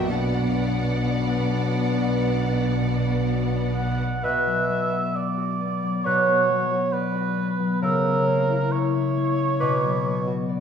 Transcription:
Already playing: B2 B3 C#5
0.00 D4 D5
0.07 B1 B2 F#3 B3 D4 D5 F#5
3.74 F#5
4.23 B2 B4 E5 F#6
4.47 F#3
4.70 B3
4.93 F#4
5.15 D5
5.37 F#4
5.60 B3
5.83 F#3
6.05 B2 F#3 B4 C#5 F#6
6.28 B3
6.50 F#3
6.71 F#4
6.92 B4 D5
7.15 F#4
7.37 B3
7.60 F#3
7.82 C#3 A#4 E6
8.05 C#4
8.27 A#3
8.49 E4
8.72 C#5
8.94 E4
9.16 A#3
9.39 C#4
9.60 B2 B4 D6
9.84 F#3
10.06 B3
10.27 F#4
10.49 D5

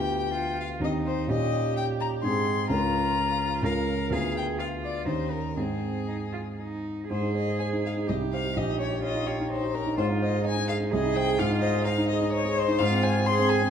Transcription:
Already playing: D2 B3 F4 G4 G5
0.34 F4
0.60 F5
0.80 D#2 C4 D#4 G4
0.84 D#5
1.06 C5
1.28 A#2 C#4 D#4 G4 D#5
1.77 G5
2.00 A#5
2.23 G#2 C4 D#4 G#4 C6
2.70 C#2 C#4 F4 A#4 A#5
3.63 C#2 C#4 F4 A#4 F5
4.10 D2 B3 F4 G#4 F5
4.37 G5
4.59 F4 F5
4.84 D5
5.06 D#2 C#4 D#4 G4 C5
5.31 A#4
5.56 G#2 C4 D#4 G#4
6.08 D#4
6.33 F4
6.59 D#4
7.09 G#2 G#4 C5
7.22 D#4
7.35 C5 D#5
7.48 G#4
7.59 C5 G#5
7.73 D#4
7.84 G#4 F5
7.97 D#4
8.06 C2 G4 D#5
8.22 D#4
8.33 C5 F5
8.45 G4
8.53 A#1 G4
8.57 D#5
8.69 D#4
8.80 C#5
8.92 G4
9.02 F4 C#5 D#5
9.15 D#4
9.27 G4 C#5
9.40 D#4
9.49 D#4 C5 C#5
9.63 G4
9.74 A#4 C#5
9.86 D#4
9.97 G#2 F4 C5
10.10 D#4
10.22 C5 D#5
10.33 G#4
10.44 D#4 C5 G#5
10.57 D#4
10.69 G#4 F5
10.81 D#4
10.91 C2 G#4 D#5
11.04 D#4
11.16 C5 G5
11.28 G#4
11.38 G#2 F4 F5
11.50 D#4
11.61 C5 D#5
11.75 G#4
11.84 D#4 C5 F5
11.98 D#4
12.09 G#4 D#5
12.21 D#4
12.32 C5 C#5
12.45 G#4
12.57 C5
12.68 D#4
12.79 G#2 F4 F5
12.91 C4
13.03 C5 G#5
13.15 G#4
13.26 G#4 C5 C6
13.39 C4
13.49 G#4 G#5
13.62 C4

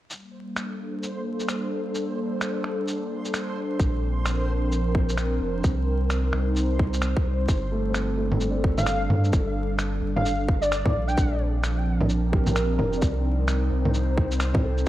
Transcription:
0.09 G3 C5, shaker
0.20 A#3
0.48 D4
0.54 A4, finger snap, shaker
1.03 shaker
1.40 shaker
1.48 finger snap, shaker
1.95 shaker
2.41 finger snap, shaker
2.64 finger snap
2.88 shaker
3.25 shaker
3.34 finger snap, shaker
3.79 A#1 F3, kick, shaker
3.90 C4
4.10 A#4
4.26 finger snap, shaker
4.72 shaker
4.95 kick
5.09 shaker
5.17 finger snap, shaker
5.40 F1
5.63 C2 G3, kick, shaker
6.10 D#4, finger snap, shaker
6.33 C2 C5, finger snap
6.56 shaker
6.79 kick
6.93 shaker
7.02 finger snap, shaker
7.17 kick
7.25 C2
7.48 G1, kick, shaker
7.72 A3
7.90 C4 D4
7.94 A4, finger snap, shaker
8.17 A3
8.32 low bongo
8.37 C4, shaker
8.50 D4
8.64 kick
8.77 F5, low bongo, shaker
8.86 finger snap, shaker
9.10 G2, low bongo
9.24 shaker
9.33 G1, kick, shaker
9.79 finger snap, shaker
10.02 G1
10.16 F5, low bongo
10.24 F5, shaker
10.48 kick
10.61 D5, shaker
10.72 finger snap, shaker
10.86 kick, low bongo
10.94 A#1
11.07 G5, shaker
11.17 A#1 F3 D4, kick, shaker
11.33 C4
11.64 finger snap, shaker
11.91 A#4
12.01 low bongo
12.09 shaker
12.32 G4, kick
12.47 low bongo, shaker
12.51 A#4
12.56 finger snap, shaker
12.77 F1 A#4, low bongo
12.93 shaker
12.98 G3 D5
13.02 C2, kick, shaker
13.12 D#4
13.48 finger snap, shaker
13.53 C5
13.71 C2
13.85 low bongo
13.94 shaker
14.17 kick
14.31 shaker
14.40 finger snap, shaker
14.54 kick, low bongo
14.63 C2 A4
14.78 shaker

